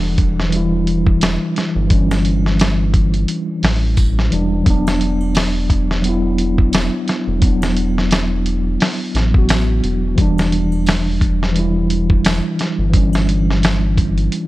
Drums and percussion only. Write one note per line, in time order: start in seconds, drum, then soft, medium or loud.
0.18 kick medium
0.18 closed hi-hat medium
0.40 snare soft
0.52 closed hi-hat medium
0.87 closed hi-hat medium
1.07 kick medium
1.21 snare loud
1.21 closed hi-hat medium
1.21 tambourine medium
1.56 snare soft
1.56 closed hi-hat medium
1.90 kick loud
1.90 closed hi-hat medium
2.11 snare soft
2.11 triangle medium
2.25 closed hi-hat medium
2.46 snare soft
2.59 snare loud
2.59 closed hi-hat medium
2.59 tambourine medium
2.94 kick medium
2.94 closed hi-hat medium
3.14 closed hi-hat soft
3.28 closed hi-hat medium
3.63 snare loud
3.63 open hi-hat medium
3.97 kick medium
3.97 closed hi-hat medium
3.97 tambourine medium
4.19 snare soft
4.32 closed hi-hat medium
4.66 kick loud
4.66 closed hi-hat medium
4.87 snare medium
4.87 triangle medium
5.01 closed hi-hat medium
5.21 triangle medium
5.35 snare loud
5.35 open hi-hat medium
5.35 tambourine medium
5.70 kick medium
5.70 closed hi-hat medium
5.91 snare soft
6.04 closed hi-hat medium
6.38 closed hi-hat medium
6.58 kick medium
6.73 snare loud
6.73 closed hi-hat medium
6.73 tambourine medium
7.08 snare soft
7.08 closed hi-hat medium
7.42 kick loud
7.42 closed hi-hat medium
7.62 snare soft
7.62 triangle medium
7.77 closed hi-hat medium
7.98 snare soft
8.11 snare loud
8.11 closed hi-hat medium
8.11 tambourine medium
8.46 closed hi-hat medium
8.80 snare medium
8.80 open hi-hat medium
9.15 snare soft
9.15 closed hi-hat medium
9.34 kick medium
9.49 snare loud
9.49 closed hi-hat medium
9.49 tambourine medium
9.84 closed hi-hat medium
10.18 kick loud
10.18 closed hi-hat medium
10.38 snare soft
10.38 triangle medium
10.52 closed hi-hat medium
10.72 triangle medium
10.86 snare loud
10.86 open hi-hat medium
10.86 tambourine medium
11.21 kick medium
11.21 closed hi-hat medium
11.43 snare soft
11.56 closed hi-hat medium
11.90 closed hi-hat medium
12.10 kick medium
12.25 snare loud
12.25 closed hi-hat medium
12.25 tambourine medium
12.59 snare soft
12.59 closed hi-hat medium
12.94 kick loud
12.94 closed hi-hat medium
13.13 snare soft
13.13 triangle medium
13.29 closed hi-hat medium
13.51 snare soft
13.63 snare loud
13.63 closed hi-hat medium
13.63 tambourine medium
13.97 kick medium
13.97 closed hi-hat medium
14.18 closed hi-hat soft
14.32 closed hi-hat medium